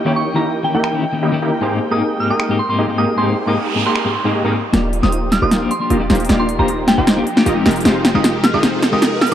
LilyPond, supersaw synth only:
\new Staff \with { instrumentName = "Supersaw synth" } { \time 4/4 \key ees \major \tempo 4 = 154 <bes ees' fes' g' des''>8. <bes ees' fes' g' bes'>4 <bes ees' fes' g' bes'>8. r8 <bes ees' fes' g' ees''>16 r16 <bes ees' fes' g' bes'>8 | <bes ees' g' aes' c''>8. <bes ees' g' aes' bes'>4 <bes ees' g' aes' bes'>8. r8 <bes ees' g' aes' ees''>16 r16 <bes ees' g' aes' bes'>8 | <bes ees' g' aes' c''>8. <bes ees' g' aes' bes'>4 <bes ees' g' aes' bes'>8. r16 <bes ees' g' aes' ees''>8 <bes ees' g' aes' bes'>16 r8 | <bes ees' f' g' d''>8. <bes ees' f' g' c''>4 <bes ees' f' g' c''>8. r8 <bes ees' f' g' ees''>16 r16 <bes ees' f' g' c''>8 |
<bes ees' f' g' d''>8. <bes ees' f' g' c''>4 <bes ees' f' g' c''>8. r8 <bes ees' f' g' ees''>16 r16 <aes ees' f' g' bes'>8 | <aes ees' f' g' c''>8. <aes ees' f' g' bes'>4 <aes ees' f' g' bes'>16 <aes ees' f' g' c''>8. <aes ees' f' g' bes'>4 r16 | }